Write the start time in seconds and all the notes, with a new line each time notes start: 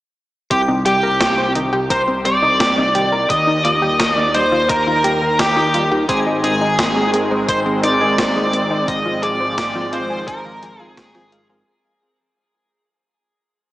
0.51 C2 C4 G4 G5, kick, closed hi-hat
0.68 C3 D#4
0.86 G3 G4 G5, closed hi-hat
1.03 C3 A#4
1.21 C5, kick, snare, closed hi-hat
1.38 C3 C4
1.55 D#3 D#4, closed hi-hat
1.73 C3 G4
1.90 A#4 C5 C6, kick, closed hi-hat
2.08 C3 C5
2.25 G3 C4 D5 D6, closed hi-hat
2.42 C3 D#4
2.60 C4, kick, snare, closed hi-hat
2.77 C3 D#4
2.95 D#3 G4, closed hi-hat
3.12 C3 A#4
3.30 D#2 D#5 D#6, kick, closed hi-hat
3.47 D#3 D#4
3.65 A#3 F4 D#5 D#6, closed hi-hat
3.82 D#3 G4
4.00 A#4, kick, snare, closed hi-hat
4.15 D#3 D5 D#5 D6
4.34 G3 D#4 C5 C6, closed hi-hat
4.52 D#3 F4
4.69 D#4 A#4 A#5, kick, closed hi-hat
4.87 D#3 F4
5.04 A#3 G4, closed hi-hat
5.22 D#3 A#4
5.39 G4 D#5 G5, kick, snare, closed hi-hat
5.57 D#3 D#4, snare
5.74 G3 F4, closed hi-hat
5.92 D#3 G4
6.09 G#1 G#2 D#3 G#3 C4 D#4 G#4 C5 G#5, kick, closed hi-hat
6.26 G#3 D#5
6.44 C4 D#4 G#4 G#5, closed hi-hat
6.61 G#2 G#3 C4 D#4 G#4
6.79 C4, kick, snare, closed hi-hat
6.96 G#2 G#3 C4 D#4 G#4
7.14 C4 G#4, closed hi-hat
7.31 G#3 C5
7.49 G#2 G#3 C4 D#4 G#4 C5 D#5 C6, kick, closed hi-hat
7.66 G#3 C4
7.83 D#4 D5 D6, closed hi-hat
8.01 G#2 G#3 C4 D#4 G#4 A#4
8.18 C5, kick, snare, closed hi-hat
8.36 G#2 G#3 C4 D#4 G#4 D#5
8.53 C4, closed hi-hat
8.71 G#3 D#4
8.88 G#1 G#2 F3 G#3 C4 F4 G#4 D#5 D#6, kick, closed hi-hat
9.05 F3 F4
9.23 C4 G#4 D5 D6, closed hi-hat
9.40 G#2 F3 G#3 C4 F4 G#4 C5
9.58 F5, kick, snare, closed hi-hat
9.75 G#2 F3 G#3 C4 F4 G#4
9.93 G#3 F4 C5 C6, closed hi-hat
10.10 F3 G#4
10.28 G#2 G#3 C4 F4 G#4 A#4 C5 A#5, kick, closed hi-hat
10.45 F3 F5
10.63 F3 G#5, closed hi-hat
10.80 G#2 F3 G#3 C4 F4 G#4 A#4 G#5
10.97 C4 G#4 G#5, kick, snare, closed hi-hat
11.15 G#2 F3 G#3 C4 F4 G#4 C5, snare
11.32 G#3 F5, closed hi-hat
11.49 G#2 G#3 C4 F4 G#4 A#4